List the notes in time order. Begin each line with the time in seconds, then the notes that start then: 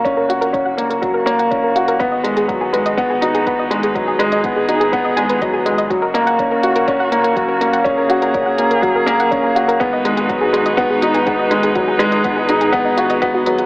Already playing: F#1 F#3 A#3 C#4 F#4
0.05 C#4, kick, closed hi-hat
0.17 A#4
0.29 F#4, closed hi-hat
0.41 A#4, closed hi-hat
0.53 C#4 C#5, kick, closed hi-hat
0.65 F#5
0.77 A#3, closed hi-hat
0.90 A#4, closed hi-hat
1.02 F#3 F#4, kick, closed hi-hat
1.14 A#4
1.26 A#3 C#5, closed hi-hat
1.39 F#5, closed hi-hat
1.51 C#4, kick, closed hi-hat
1.64 A#4
1.76 F#4, closed hi-hat
1.88 A#4, closed hi-hat
1.99 G#1 G#3 B3 D#4 B4, kick, closed hi-hat
2.12 D#5
2.24 G#3, closed hi-hat
2.37 G#4, closed hi-hat
2.48 F#3 F#4, kick, closed hi-hat
2.61 G#4
2.73 G#3 B4, closed hi-hat
2.86 D#5, closed hi-hat
2.97 B3, kick, closed hi-hat
3.10 G#4
3.21 D#4 F#4, closed hi-hat
3.34 G#4, closed hi-hat
3.46 B3 B4, kick, closed hi-hat
3.59 D#5
3.70 G#3, closed hi-hat
3.83 G#4, closed hi-hat
3.95 F#3 F#4 G#4, kick, closed hi-hat
4.07 G#4
4.19 G#3 B4, closed hi-hat
4.32 D#5, closed hi-hat
4.44 B3, kick, closed hi-hat
4.56 G#4
4.68 D#4 F#4, closed hi-hat
4.80 G#4, closed hi-hat
4.92 B3 B4, kick, closed hi-hat
5.04 D#5
5.17 G#3 G#5, closed hi-hat
5.29 B4, closed hi-hat
5.42 F#3 D#5, kick, closed hi-hat
5.53 G#4
5.66 G#3 D#5, closed hi-hat
5.78 D#5, closed hi-hat
5.90 F#1 F#3 A#3 C#4 F#4, kick, closed hi-hat
6.02 A#4
6.14 A#3 A#4, closed hi-hat
6.27 F#5, closed hi-hat
6.39 C#4, kick, closed hi-hat
6.51 A#4
6.63 F#4, closed hi-hat
6.76 A#4, closed hi-hat
6.88 C#4 A#4, kick, closed hi-hat
7.00 F#5
7.12 A#3, closed hi-hat
7.23 A#4, closed hi-hat
7.36 F#3 F#4, kick, closed hi-hat
7.48 A#4
7.61 A#3 A#4, closed hi-hat
7.73 F#5, closed hi-hat
7.84 C#4 G#4, kick, closed hi-hat
7.98 A#4
8.09 F#4, closed hi-hat
8.22 A#4, closed hi-hat
8.34 C#4 A#4, kick, closed hi-hat
8.46 F#5
8.58 A#3, closed hi-hat
8.71 A#4, closed hi-hat
8.82 F#3 F#4, kick, closed hi-hat
8.95 A#4
9.06 A#3 A#4, closed hi-hat
9.20 F#5, closed hi-hat
9.31 C#4, kick, closed hi-hat
9.44 A#4
9.55 F#4, closed hi-hat
9.68 A#4, closed hi-hat
9.80 G#1 G#3 B3 D#4 F#4 G#4 B4, kick, closed hi-hat
9.93 D#5
10.05 G#3, closed hi-hat
10.17 G#4, closed hi-hat
10.29 F#3 F#4, kick, closed hi-hat
10.41 G#4
10.53 G#3 G#4, closed hi-hat
10.66 D#5, closed hi-hat
10.77 B3, kick, closed hi-hat
10.90 G#4
11.02 D#4 F#4, closed hi-hat
11.14 G#4, closed hi-hat
11.26 B3 G#4, kick, closed hi-hat
11.39 D#5
11.51 G#3, closed hi-hat
11.63 G#4, closed hi-hat
11.75 F#3 F#4 G#4, kick, closed hi-hat
11.88 G#4
11.99 G#3 G#4, closed hi-hat
12.12 D#5, closed hi-hat
12.24 B3, kick, closed hi-hat
12.36 G#4
12.49 D#4 F#4, closed hi-hat
12.61 G#4, closed hi-hat
12.72 B3 G#4, kick, closed hi-hat
12.85 D#5
12.97 F#4, closed hi-hat
13.10 D#5, closed hi-hat
13.22 B3 F#4, kick, closed hi-hat
13.34 F#4
13.46 F#3 B4, closed hi-hat
13.58 F#4, closed hi-hat